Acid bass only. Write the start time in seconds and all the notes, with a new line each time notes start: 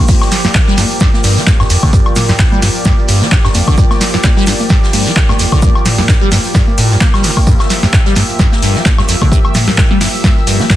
0.09 G2
0.45 G2
0.55 G2
0.68 G3
0.78 G2
1.01 G2
1.24 G2
1.37 G3
1.47 G2
1.60 G2
1.70 F2
1.83 D3
1.93 G2
2.29 G2
2.39 G2
2.52 G3
2.62 G2
2.85 G2
3.09 G2
3.21 G3
3.32 G2
3.45 G2
3.55 F2
3.68 D3
3.78 G2
4.14 G2
4.24 G2
4.37 G3
4.47 G2
4.70 G2
4.93 G2
5.06 G3
5.16 G2
5.29 G2
5.39 F2
5.52 D3
5.62 G2
5.98 G2
6.08 G2
6.21 G3
6.32 G2
6.55 G2
6.78 A2
6.91 G2
7.01 A#3
7.14 G3
7.24 D3
7.37 A#3
7.47 G2
7.83 G2
7.93 G2
8.06 G3
8.16 G2
8.39 G2
8.62 G2
8.75 G3
8.85 G2
8.98 G2
9.08 F2
9.21 D3
9.32 G2
9.68 G2
9.78 G2
9.91 G3
10.01 G2
10.24 G2
10.47 G2
10.60 G3
10.70 G2